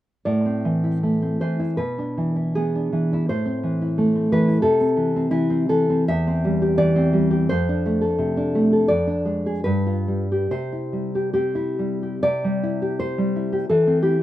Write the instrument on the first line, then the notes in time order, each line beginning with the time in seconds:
nylon-string guitar
0.25 A2 D5
0.45 C4
0.65 E3
0.84 E4
1.03 A3
1.22 C4
1.41 E3 C5
1.59 E4
1.77 B2 B4
1.98 D4
2.17 E3
2.36 E4
2.55 B3 G#4
2.75 D4
2.93 E3
3.13 E4
3.29 A2 C5
3.45 C4
3.63 E3
3.82 E4
3.98 A3
4.15 C4
4.32 E3 B4
4.48 E4
4.62 C3 A4
4.81 C4
4.97 E3
5.16 C4
5.31 E3 E4
5.50 C4
5.69 E3 A4
5.90 C4
6.08 E2 E5
6.27 C4
6.45 G3
6.62 G4
6.78 E3 D5
6.96 C4
7.13 G3
7.31 G4
7.49 F2 C5
7.69 D4
7.86 A3
8.01 A4
8.19 C3
8.37 D4
8.55 A3
8.73 A4
8.88 F2 D5
9.07 D4
9.25 G#3
9.46 G#4
9.64 G2 B4
9.87 F4
10.08 G3
10.32 G4
10.51 C3 C5
10.73 E4
10.93 G3
11.15 G4
11.33 C4 G4
11.55 E4
11.79 G3
12.03 G4
12.23 C3 D5
12.44 G3
12.63 E4
12.82 G4
12.99 C5
13.18 G3
13.36 E4
13.53 G4
13.69 E3 A4
13.87 C4
14.03 E4 G4